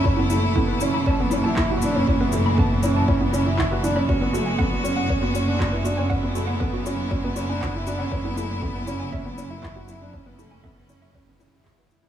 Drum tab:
SH |-x-x-x-x|-x-x-x-x|-x-x-x-x|-x-x-x-x|
CP |------x-|------x-|------x-|------x-|
BD |o-o-o-o-|o-o-o-o-|o-o-o-o-|o-o-o-o-|

SH |-x-x-x-x|-x-x-x-x|
CP |------x-|------x-|
BD |o-o-o-o-|o-o-o-o-|